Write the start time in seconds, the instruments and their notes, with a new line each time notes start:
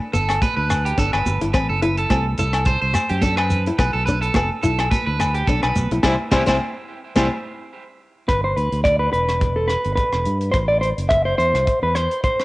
0.13 fingered electric bass G1, nylon-string guitar B3, clean electric guitar A4, closed hi-hat, muted conga, shekere
0.29 cross-stick, closed hi-hat, low agogo, shekere
0.42 clean electric guitar B4, kick, closed hi-hat, muted conga, high conga, shekere
0.56 fingered electric bass D2, clean electric guitar B4
0.70 cross-stick, closed hi-hat, low agogo, shekere
0.85 clean electric guitar G4, closed hi-hat
0.98 fingered electric bass G1, nylon-string guitar D4, clean electric guitar A4, kick, closed hi-hat, shekere
1.13 fingered electric bass G1, clean electric guitar B4, cross-stick, low agogo
1.26 fingered electric bass G1, closed hi-hat, high conga, shekere
1.41 fingered electric bass G1, nylon-string guitar E4, closed hi-hat, shekere
1.53 fingered electric bass A1, nylon-string guitar C4, clean electric guitar B4, kick, cross-stick, closed hi-hat, muted conga, low agogo, shekere
1.69 fingered electric bass F#1, clean electric guitar A4
1.82 nylon-string guitar E4, clean electric guitar B4, closed hi-hat, muted conga
1.97 clean electric guitar A4, closed hi-hat
2.10 fingered electric bass C2, nylon-string guitar C4, kick, cross-stick, closed hi-hat, high conga, low agogo, shekere
2.37 fingered electric bass C2, nylon-string guitar E4, clean electric guitar A4, closed hi-hat, muted conga, shekere
2.53 cross-stick, closed hi-hat, low agogo, shekere
2.65 clean electric guitar C5, kick, closed hi-hat, muted conga, shekere
2.82 fingered electric bass C2, clean electric guitar C5
2.93 cross-stick, closed hi-hat, high conga, low agogo, shekere
3.09 fingered electric bass F#2, clean electric guitar G4, closed hi-hat
3.22 nylon-string guitar D4, clean electric guitar A4, kick, closed hi-hat, high conga, shekere
3.37 clean electric guitar B4, cross-stick, low agogo
3.50 closed hi-hat, low conga, shekere
3.66 nylon-string guitar E4, closed hi-hat, shekere
3.78 fingered electric bass B1, nylon-string guitar B3, clean electric guitar B4, kick, cross-stick, closed hi-hat, muted conga, low agogo, shekere
3.93 fingered electric bass B1, clean electric guitar A4
4.06 nylon-string guitar D4, clean electric guitar B4, closed hi-hat, muted conga, shekere
4.22 clean electric guitar A4, closed hi-hat
4.34 fingered electric bass F1, nylon-string guitar B3, kick, cross-stick, closed hi-hat, high conga, low agogo, shekere
4.63 fingered electric bass B1, nylon-string guitar E4, clean electric guitar A4, closed hi-hat, muted conga, shekere
4.79 cross-stick, closed hi-hat, low agogo, shekere
4.91 clean electric guitar B4, kick, closed hi-hat, muted conga, high conga, shekere
5.06 fingered electric bass D2, clean electric guitar B4
5.20 cross-stick, closed hi-hat, low agogo, shekere
5.34 clean electric guitar G4, closed hi-hat
5.47 fingered electric bass B1, nylon-string guitar D4, clean electric guitar A4, kick, closed hi-hat, shekere
5.63 fingered electric bass B1, clean electric guitar B4, cross-stick, low agogo
5.75 fingered electric bass B1, closed hi-hat, high conga, shekere
5.91 fingered electric bass B1, nylon-string guitar E4, closed hi-hat, shekere
6.03 fingered electric bass C2, nylon-string guitar G3 C4 E4, clean electric guitar E4 G4 C5, kick, snare, high conga, low agogo, shekere
6.31 fingered electric bass C2, nylon-string guitar G3 C4 E4, clean electric guitar E4 G4 C5, kick, snare, high conga, low agogo, shekere
6.46 fingered electric bass C2, nylon-string guitar G3 C4 E4, clean electric guitar E4 G4 C5, kick, snare, high conga, low agogo, shekere
7.16 fingered electric bass C2, nylon-string guitar G3 C4 E4, clean electric guitar E4 G4 C5, kick, snare, high conga, low agogo, shekere
8.28 fingered electric bass G1, clean electric guitar B4, kick, cross-stick, closed hi-hat
8.44 clean electric guitar C5
8.56 fingered electric bass D2, clean electric guitar B4, closed hi-hat
8.72 fingered electric bass D2, closed hi-hat
8.84 clean electric guitar D5, kick, cross-stick, closed hi-hat
8.99 clean electric guitar B4
9.13 fingered electric bass E1, clean electric guitar B4, closed hi-hat
9.29 cross-stick, closed hi-hat
9.41 kick, closed hi-hat
9.56 clean electric guitar A4
9.68 clean electric guitar B4, cross-stick, closed hi-hat
9.84 fingered electric bass G1, closed hi-hat
9.96 clean electric guitar B4, kick, closed hi-hat
10.13 fingered electric bass E1, cross-stick
10.25 fingered electric bass G2, closed hi-hat
10.41 closed hi-hat
10.52 fingered electric bass A1, clean electric guitar C5, kick, cross-stick, closed hi-hat
10.68 clean electric guitar D5
10.81 clean electric guitar C5, closed hi-hat
10.98 fingered electric bass F#1, closed hi-hat
11.09 clean electric guitar E5, kick, cross-stick, closed hi-hat
11.25 clean electric guitar C5
11.38 fingered electric bass E2, clean electric guitar C5, closed hi-hat
11.54 fingered electric bass C2, cross-stick, closed hi-hat
11.67 kick, closed hi-hat
11.82 fingered electric bass E2, clean electric guitar B4
11.95 clean electric guitar C5, cross-stick, closed hi-hat
12.11 closed hi-hat
12.24 clean electric guitar C5, kick, closed hi-hat
12.40 cross-stick